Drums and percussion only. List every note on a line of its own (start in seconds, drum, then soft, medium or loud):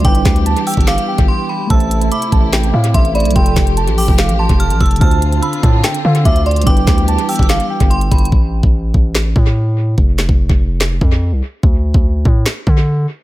0.05 kick loud
0.05 closed hi-hat medium
0.15 closed hi-hat medium
0.25 kick loud
0.25 snare loud
0.25 clap medium
0.25 closed hi-hat loud
0.36 closed hi-hat medium
0.46 closed hi-hat medium
0.57 closed hi-hat medium
0.67 closed hi-hat medium
0.67 open hi-hat medium
0.74 kick medium
0.74 closed hi-hat medium
0.81 closed hi-hat medium
0.87 snare loud
0.87 clap loud
0.87 closed hi-hat medium
0.98 closed hi-hat medium
1.18 kick medium
1.18 closed hi-hat medium
1.70 kick loud
1.70 closed hi-hat medium
1.80 closed hi-hat medium
1.91 closed hi-hat loud
2.01 closed hi-hat medium
2.12 closed hi-hat medium
2.22 closed hi-hat medium
2.32 kick loud
2.32 closed hi-hat medium
2.53 snare loud
2.53 clap loud
2.53 closed hi-hat medium
2.63 closed hi-hat medium
2.84 closed hi-hat medium
2.94 kick medium
2.94 closed hi-hat medium
3.05 closed hi-hat medium
3.15 closed hi-hat soft
3.20 closed hi-hat medium
3.25 closed hi-hat medium
3.31 closed hi-hat medium
3.36 kick loud
3.36 closed hi-hat medium
3.46 closed hi-hat medium
3.56 kick loud
3.56 snare loud
3.56 clap medium
3.56 closed hi-hat medium
3.67 closed hi-hat medium
3.77 closed hi-hat medium
3.88 closed hi-hat medium
3.98 open hi-hat medium
4.08 kick medium
4.18 snare loud
4.18 clap loud
4.18 closed hi-hat medium
4.29 closed hi-hat medium
4.49 kick medium
4.49 closed hi-hat medium
4.60 closed hi-hat medium
4.70 closed hi-hat medium
4.81 kick medium
4.81 closed hi-hat soft
4.86 closed hi-hat medium
4.91 closed hi-hat medium
4.96 closed hi-hat medium
5.01 kick loud
5.01 closed hi-hat medium
5.11 closed hi-hat medium
5.22 closed hi-hat loud
5.33 closed hi-hat medium
5.43 closed hi-hat medium
5.53 closed hi-hat medium
5.63 kick loud
5.63 closed hi-hat medium
5.84 snare loud
5.84 clap loud
5.84 closed hi-hat medium
5.94 closed hi-hat medium
6.15 closed hi-hat medium
6.25 kick medium
6.25 closed hi-hat medium
6.36 closed hi-hat medium
6.46 closed hi-hat soft
6.51 closed hi-hat soft
6.56 closed hi-hat medium
6.62 closed hi-hat medium
6.67 kick loud
6.67 closed hi-hat medium
6.77 closed hi-hat medium
6.87 kick loud
6.87 snare loud
6.87 clap medium
6.87 closed hi-hat medium
6.98 closed hi-hat medium
7.08 closed hi-hat medium
7.18 closed hi-hat medium
7.29 closed hi-hat medium
7.29 open hi-hat medium
7.36 kick medium
7.36 closed hi-hat medium
7.43 closed hi-hat medium
7.49 snare loud
7.49 clap loud
7.49 closed hi-hat medium
7.60 closed hi-hat medium
7.80 kick medium
7.80 closed hi-hat medium
7.91 closed hi-hat medium
8.01 closed hi-hat medium
8.12 kick medium
8.12 closed hi-hat medium
8.18 closed hi-hat medium
8.25 closed hi-hat medium
8.32 kick loud
8.63 kick loud
8.94 kick medium
9.15 snare loud
9.15 clap loud
9.36 kick loud
9.98 kick loud
10.19 snare loud
10.19 clap medium
10.29 kick loud
10.49 kick loud
10.81 snare loud
10.81 clap loud
11.01 kick loud
11.63 kick loud
11.94 kick loud
12.25 kick loud
12.46 snare loud
12.46 clap loud
12.67 kick loud